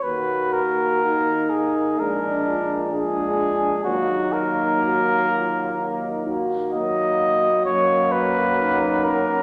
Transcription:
0.03 tuba D#2, euphonium A#3, trombone section F#4, cornet B4
0.53 cornet A#4
1.03 trombone section D#4
1.50 cornet G#4
1.99 tuba A#1, euphonium G#3, trombone section D4, french horn section D4, cornet A#4
2.48 french horn section F4
2.92 euphonium G#3, trombone section D4, cornet G#4
3.84 tuba D#2, euphonium F#3, trombone section A#3, french horn section D#4, cornet F#4
4.33 cornet A#4
4.82 french horn section F#4
5.30 french horn section F4
5.78 french horn section D#4
6.26 french horn section F#4
6.71 euphonium F#3, trombone section A#3, cornet D#5
7.65 tuba F#2, euphonium F#3, trombone section A#3, cornet C#5
8.12 cornet B4
8.61 french horn section D#4
9.05 french horn section C#4, cornet A#4

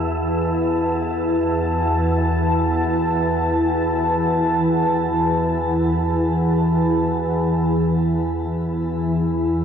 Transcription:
Already playing: synth drone E2 E3, ambient pad E4 B4 F#5 A5, synth texture E5
7.60 synth drone E2 E3

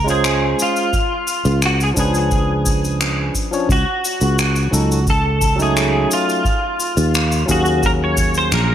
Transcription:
Already playing: fretless electric bass C#2
0.04 tine electric piano G#3 C#4 F4, cabasa
0.10 pedal steel guitar G#4, tine electric piano C5
0.24 finger snap, cabasa
0.59 pedal steel guitar F4, cabasa
0.76 cabasa
0.93 kick, cabasa
1.27 cabasa
1.45 fretless electric bass C#2, cabasa
1.62 pedal steel guitar F#4, finger snap, cabasa
1.80 pedal steel guitar G#4, cabasa
1.94 fretless electric bass C#2, tine electric piano F3 C#4 D4, kick, cabasa
1.99 pedal steel guitar G#4, tine electric piano B4
2.14 cabasa
2.31 kick, cabasa
2.66 kick, cabasa
2.84 cabasa
3.01 finger snap, cabasa
3.35 kick, cabasa
3.51 tine electric piano F3 C#4 D4 C#5, cabasa
3.69 fretless electric bass C#2, pedal steel guitar F#4, kick, cabasa
4.05 cabasa
4.21 fretless electric bass C#2, cabasa
4.39 finger snap, cabasa
4.56 cabasa
4.71 fretless electric bass C#2, tine electric piano F#3 C#4 D#4 A4, cabasa
4.92 cabasa
5.07 pedal steel guitar A4, kick, cabasa
5.41 kick, cabasa
5.56 tine electric piano F#3 C#4 D#4, cabasa
5.61 tine electric piano A3, pedal steel guitar G#4
5.77 finger snap, cabasa
6.11 pedal steel guitar F4, cabasa
6.29 cabasa
6.45 kick, cabasa
6.80 cabasa
6.97 fretless electric bass D#2, cabasa
7.14 finger snap, cabasa
7.32 cabasa
7.46 fretless electric bass D#2, tine electric piano F#3 C#4 F5, kick, cabasa
7.50 pedal steel guitar F#4, tine electric piano G#4
7.66 cabasa
7.83 pedal steel guitar A#4, kick, cabasa
8.04 pedal steel guitar C#5
8.17 kick, cabasa
8.34 pedal steel guitar C5, cabasa
8.52 fretless electric bass A#1, pedal steel guitar A#4, finger snap, cabasa

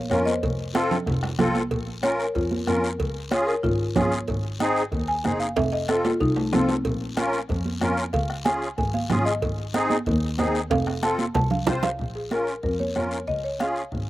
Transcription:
Already playing: double bass A#1, marimba F5
0.10 double bass F2, accordion C#4 F4 A#4, marimba A#4 C#5, bombo rim, high conga, short guiro
0.26 marimba C5 D#5, high conga, short guiro
0.43 double bass F1, bombo low, cowbell, high conga, long guiro
0.74 accordion C4 F4 A4, bombo rim, high conga, high timbale, short guiro
0.91 low conga, high timbale, short guiro
1.07 double bass F1, bombo low, cowbell, high conga, low timbale, long guiro
1.23 bombo rim, low timbale
1.39 double bass C2, accordion C4 F4 A4, bombo rim, high conga, low conga, low timbale, short guiro
1.55 high conga, low timbale, short guiro
1.71 double bass A#1, bombo low, cowbell, long guiro
1.87 high conga
2.03 accordion C#4 F4 A#4, marimba C#5, bombo rim, cowbell, high conga, short guiro
2.20 marimba A#4, short guiro
2.35 double bass F2, marimba F4, bombo low, cowbell, high conga, long guiro
2.51 high conga
2.67 double bass F2, accordion C#4 F4 A#4, marimba A#4, bombo rim, cowbell, high conga, short guiro
2.84 short guiro
3.00 double bass C#2, bombo low, cowbell, long guiro
3.16 high conga
3.31 accordion C#4 F4 G#4, marimba C#5, bombo rim, cowbell, high conga, short guiro
3.47 marimba A#4, short guiro
3.63 double bass G#1, marimba F4, bombo low, cowbell, high conga, long guiro
3.96 double bass G#1, accordion C#4 F4 G#4, marimba C#5, bombo low, bombo rim, cowbell, high conga, low conga, low timbale, short guiro
4.12 short guiro
4.28 double bass G#1, bombo low, cowbell, long guiro
4.45 high conga
4.60 accordion C4 D#4 G#4, bombo rim, cowbell, high conga, short guiro
4.76 short guiro
4.92 double bass D#2, bombo low, cowbell, high conga, long guiro
5.08 marimba G#5
5.24 double bass F#1, accordion C4 D#4 G#4, bombo rim, cowbell, high conga, short guiro
5.40 marimba F5, short guiro
5.56 double bass F1, marimba E5, bombo low, cowbell, high timbale, long guiro
5.72 marimba D#5, high conga, high timbale
5.88 accordion C4 F4 A4, marimba A4, bombo rim, cowbell, high conga, high timbale, short guiro
6.05 marimba F4, high conga, low timbale, short guiro
6.20 double bass C2, marimba D#4, bombo low, cowbell, high conga, long guiro
6.36 marimba A3, low timbale
6.52 double bass C2, accordion C4 F4 A4, marimba C4, bombo rim, cowbell, high conga, low conga, low timbale, short guiro
6.69 low timbale, short guiro
6.85 double bass A#1, bombo low, cowbell, long guiro
7.01 high conga
7.17 accordion C#4 F4 A#4, bombo rim, cowbell, high conga, short guiro
7.33 short guiro
7.49 double bass F2, bombo low, cowbell, high conga, long guiro
7.65 high conga
7.81 double bass F2, accordion C#4 F4 A#4, bombo rim, cowbell, high conga, short guiro
7.97 short guiro
8.13 double bass C#2, marimba F5, bombo low, cowbell, long guiro
8.30 bombo rim, high conga
8.45 accordion C#4 F4 G#4, marimba G#5, bombo rim, cowbell, high conga, short guiro
8.62 short guiro
8.78 double bass G#1, marimba G#5, bombo low, cowbell, high conga, long guiro
8.94 marimba F5, high conga
9.10 double bass G#1, accordion C#4 F4 G#4, bombo rim, cowbell, high conga, low conga, short guiro
9.25 marimba D#5, short guiro
9.42 double bass G#1, bombo low, cowbell, long guiro
9.58 high conga
9.74 accordion C4 D#4 G#4, bombo rim, cowbell, high conga, short guiro
9.90 high conga, short guiro
10.06 double bass D#2, bombo low, cowbell, high conga, long guiro
10.38 double bass D#2, accordion C4 D#4 G#4, bombo rim, cowbell, high conga, short guiro
10.55 short guiro
10.70 double bass F1, marimba F5, bombo low, cowbell, high timbale, long guiro
10.87 bombo rim, high conga, high timbale
11.02 accordion C4 F4 A4, marimba A5, bombo rim, cowbell, high conga, short guiro
11.19 high conga, short guiro
11.35 double bass C2, marimba A5, bombo low, cowbell, high conga, low timbale, long guiro
11.51 marimba F5, low conga
11.66 double bass C2, accordion C4 F4 C5, bombo low, bombo rim, cowbell, low conga, low timbale, short guiro
11.83 marimba F5, low conga, low timbale, short guiro
11.99 double bass A#1, bombo low, high conga, long guiro
12.15 marimba G#4
12.31 accordion C#4 F4 A#4, marimba A#4, bombo rim, high conga, short guiro
12.47 short guiro
12.63 double bass F2, marimba A#4, bombo low, high conga, long guiro
12.80 marimba C#5, high conga
12.95 double bass F2, accordion C#4 F4 A#4, marimba C#5, bombo rim, high conga, short guiro
13.11 short guiro
13.27 double bass C#2, marimba D#5, bombo low, high conga, long guiro
13.44 marimba C#5
13.60 accordion C#4 F4 G#4, marimba F5, bombo rim, high conga, short guiro
13.76 short guiro
13.92 double bass G#1, bombo low, high conga, long guiro

